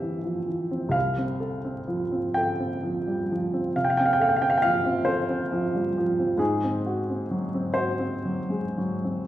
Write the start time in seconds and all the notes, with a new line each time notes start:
Already playing: G2 E3 C4 G4 E5 G5 A5
0.02 E3
0.25 F3
0.48 E3
0.71 C4
0.89 C2 F5
1.18 C4
1.40 A4
1.65 C4
1.88 F3
2.12 C4
2.34 A4 G5
2.60 C4
2.83 F3
3.07 G3
3.32 F3
3.54 C4
3.76 C3 F5
3.84 G5
3.90 F5
3.97 C4 G5
4.06 F5
4.13 G5
4.20 A4 F5
4.29 G5
4.36 F5
4.42 C4 G5
4.50 F5
4.58 G5
4.62 F3 F5
4.86 C4
5.05 A4 C5
5.29 C4
5.52 F3
5.75 G3
5.98 F3
6.19 C4
6.38 G#2 G#4
6.64 C4
6.86 F#4
7.10 C4
7.31 F#3
7.54 C4
7.74 F#4 C5
7.99 C4
8.25 F#3
8.50 G#3
8.78 F#3
9.04 C4